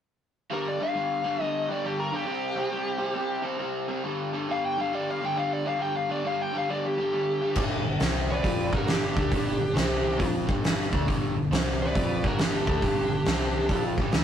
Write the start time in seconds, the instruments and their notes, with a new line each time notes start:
0.50 overdriven electric guitar G2 D3 G3, lead electric guitar A#4
0.68 lead electric guitar D5
0.79 overdriven electric guitar G2 D3 G3, lead electric guitar F5
0.94 overdriven electric guitar G2 D3 G3
1.23 overdriven electric guitar G2 D3 G3
1.40 overdriven electric guitar G2 D3 G3, lead electric guitar D#5
1.67 overdriven electric guitar G2 D3 G3
1.72 lead electric guitar D5
1.84 overdriven electric guitar G2 D3 G3, lead electric guitar G4
2.00 lead electric guitar A#4
2.12 overdriven electric guitar G2 D3 G3, lead electric guitar G4
2.25 overdriven electric guitar C3 G3 C4
2.56 overdriven electric guitar C3 G3 C4
2.71 overdriven electric guitar C3 G3 C4
2.98 overdriven electric guitar C3 G3 C4
3.14 overdriven electric guitar C3 G3 C4
3.43 overdriven electric guitar C3 G3 C4
3.58 overdriven electric guitar C3 G3 C4
3.88 overdriven electric guitar C3 G3 C4
4.03 overdriven electric guitar G2 D3 G3
4.33 overdriven electric guitar G2 D3 G3
4.49 overdriven electric guitar G2 D3 G3, lead electric guitar F5
4.66 lead electric guitar G5
4.77 overdriven electric guitar G2 D3 G3, lead electric guitar F5
4.92 overdriven electric guitar G2 D3 G3, lead electric guitar D5
5.10 lead electric guitar F5
5.21 overdriven electric guitar G2 D3 G3
5.25 lead electric guitar G5
5.36 overdriven electric guitar G2 D3 G3, lead electric guitar F5
5.53 lead electric guitar D5
5.65 overdriven electric guitar G2 D3 G3, lead electric guitar F5
5.79 overdriven electric guitar G2 D3 G3, lead electric guitar G5
5.97 lead electric guitar F5
6.09 overdriven electric guitar G2 D3 G3, lead electric guitar D5
6.24 overdriven electric guitar G2 D3 G3, lead electric guitar F5
6.42 lead electric guitar G5
6.54 overdriven electric guitar G2 D3 G3
6.58 lead electric guitar F5
6.70 overdriven electric guitar G2 D3 G3, lead electric guitar D5
6.85 lead electric guitar G4
6.98 overdriven electric guitar G2 D3 G3
7.13 overdriven electric guitar G2 D3 G3
7.42 overdriven electric guitar G2 D3 G3
7.55 picked electric bass G1, overdriven electric guitar G2 D3 G3, kick, crash
7.85 picked electric bass G1, overdriven electric guitar G2 D3
8.00 picked electric bass C2, overdriven electric guitar C3 G3 C4, snare, open hi-hat
8.31 lead electric guitar B4 D5
8.43 picked electric bass F2, overdriven electric guitar F3 C4 F4, kick, open hi-hat
8.71 picked electric bass G1, overdriven electric guitar G2 D3 G3, lead electric guitar A#4, kick
8.76 lead electric guitar F#4
8.88 lead electric guitar D4 G4, snare, open hi-hat
9.05 lead electric guitar D4 G4
9.17 picked electric bass D2, overdriven electric guitar D3 A3 D4, kick
9.31 picked electric bass G1, overdriven electric guitar G2 D3 G3, kick, open hi-hat
9.59 picked electric bass G1, overdriven electric guitar G2 D3
9.74 picked electric bass C2, overdriven electric guitar C3 G3 C4, snare, open hi-hat
10.17 picked electric bass F2, overdriven electric guitar F3 C4 F4, kick, open hi-hat
10.46 picked electric bass G1, overdriven electric guitar G2 D3 G3, kick
10.64 snare, open hi-hat
10.92 picked electric bass D2, overdriven electric guitar D3 A3 D4, kick
11.06 picked electric bass G1, overdriven electric guitar G2 D3 G3, kick, open hi-hat
11.35 picked electric bass G1, overdriven electric guitar G2 D3
11.51 picked electric bass C2, overdriven electric guitar C3 G3 C4, snare, open hi-hat
11.82 lead electric guitar B4 D5
11.95 picked electric bass F2, overdriven electric guitar F3 C4 F4, kick, open hi-hat
12.24 picked electric bass G1, overdriven electric guitar G2 D3 G3, lead electric guitar F#4 A#4, kick
12.39 lead electric guitar D4 G4, snare, open hi-hat
12.56 lead electric guitar D4 G4
12.67 picked electric bass D2, overdriven electric guitar D3 A3 D4, kick
12.82 picked electric bass G1, overdriven electric guitar G2 D3 G3, kick, open hi-hat
13.10 picked electric bass G1, overdriven electric guitar G2 D3
13.26 picked electric bass C2, overdriven electric guitar C3 G3 C4, snare, open hi-hat
13.69 picked electric bass F2, overdriven electric guitar F3 C4 F4, kick, open hi-hat
13.98 picked electric bass G1, overdriven electric guitar G2 D3 G3, kick
14.12 picked electric bass D2, overdriven electric guitar D3 A3 D4, snare, open hi-hat